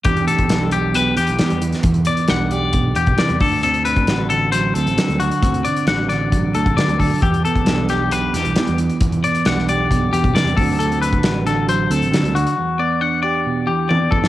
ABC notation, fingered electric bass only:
X:1
M:4/4
L:1/16
Q:1/4=134
K:Em
V:1 name="Fingered electric bass" clef=bass
E,,2 z2 B,,,6 E,, B,,, E, E,,2 z | E,,2 z2 B,,,6 E,, B,,, E, E,, D,,2- | D,,4 A,,,6 D,, A,,, D, D,,2 z | D,,2 z2 A,,,6 D,, A,,, D, D,,2 z |
E,,2 z2 B,,,6 E,, B,,, E, E,,2 z | E,,2 z2 B,,,6 E,, B,,, E, E,, D,,2- | D,,4 A,,,6 D,, A,,, D, D,,2 z | z16 |]